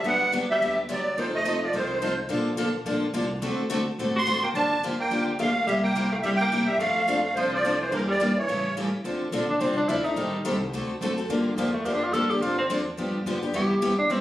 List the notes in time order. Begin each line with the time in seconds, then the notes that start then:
0.03 G1 D3 F#3 B3 D4 G4 F#5
0.32 D3 F#3 B3 D4 G4
0.50 G3 E5
0.60 D2 D3 F#3 B3 D4 G4
0.89 D3 F#3 B3 D4 G4 D5
1.17 F1 D#3 F3 C4 D#4 A4 C5
1.35 A3 D#5
1.45 F3 C4 D#4 A4
1.63 F3 D5
1.73 C2 D#3 F3 C4 D#4 A4 C5
2.02 F3 C4 D#4 A4
2.29 A#1 D3 F3 A#3 D4 A4
2.57 D3 F3 A#3 D4 A4
2.86 A#1 D3 F3 A#3 D4 A4
3.13 C2 D3 F3 A#3 D4 A4
3.42 D2 D3 A3 C4 F#4 A4
3.70 D3 A3 C4 F#4 A4
3.98 A1 D3 A3 C4 F#4 A4
4.16 F#4 C6
4.26 D3 A3 C4 F#4 A4
4.43 A#3 G5
4.54 G1 D3 F3 A#3 D4 G4 A5
4.83 D3 F3 A#3 D4 G4
5.00 A#3 G5
5.11 D2 D3 F3 A#3 D4 G4
5.39 D3 F3 A3 A#3 D4 G4 F5
5.67 C2 C3 G3 A#3 E4 G4 E5
5.83 A#3 G5
5.95 C3 G3 A#3 E4 G4
6.12 A3 F5
6.22 G2 C3 G3 A#3 E4 G4 E5
6.36 G5
6.41 A#3
6.52 C3 G3 A#3 E4 G4
6.66 G3 E5
6.78 F2 F3 A3 C4 D4 A4 F5
7.08 F3 C4 D4 A4
7.24 A3 F5
7.35 C2 F3 C4 D4 A4 C5
7.53 F3 D5
7.65 F3 C4 D4 A4
7.81 E3 C5
7.91 E2 D3 E3 G3 A#3 D4 E4 G4 A#4
8.08 G3 D5
8.20 E3 G3 A#3 D4 E4 G4 A#4
8.36 E3 C#5
8.48 A1 C#3 E3 G3 A3 C#4 E4 G4 A4
8.77 C#3 E3 G3 A3 C#4 E4 G4 A4
9.04 D2 D3 F3 C4 D4 A4
9.32 A#1 D3 F3 C4 D4 A4
9.49 D4
9.60 C2 D3 F3 C4 D4 A4
9.77 D4
9.88 D2 D3 F3 C4 D4 E4 A4
10.04 C4 D4 D#4 A4
10.16 A1 D#3 G3 C4 G4 A4
10.45 C2 D#3 G3 C4 G4 A4
10.72 D2 D3 A3 C4 F#4 A4
11.01 F#2 D3 A3 C4 F#4 A4
11.18 C4 F#4 A4
11.29 G2 D3 F3 A#3 D4 G4
11.46 D3
11.56 E2 D3 F3 A#3 D4 G4
11.73 A3
11.85 F2 D3 F3 A#3 D4 G4
11.94 D4
12.04 F4
12.12 G2 D3 F3 A#3 D4 G4 A4
12.30 A#3 D4 G4
12.40 D2 D3 F3 C4 D4 F4 A4
12.59 C4
12.69 E2 D3 F3 C4 D4 A4
12.97 G2 D3 F3 B3 D4 G4
13.26 F2 D3 F3 B3 D4 G4
13.43 B3 D4 G4
13.54 E2 C3 G3 B3 E4 G4
13.82 D2 C3 G3 B3 E4 G4
13.99 D4
14.10 C2 C3 G3 B3 C4 E4 G4